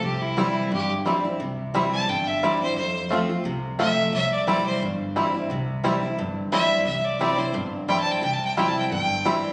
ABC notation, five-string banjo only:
X:1
M:4/4
L:1/8
Q:"Swing" 1/4=176
K:C
V:1 name="Five-string banjo"
z2 [G,CE] z3 [G,CE] z | z2 [G,CE] z3 [G,CE] z | z2 [A,CF] z3 [A,CF] z | z2 [G,CE] z3 [G,CE] z |
z2 [G,CE] z3 [G,CE] z | z2 [G,CE] z3 [G,CE] z | z2 [G,CE] z3 [G,CE] z |]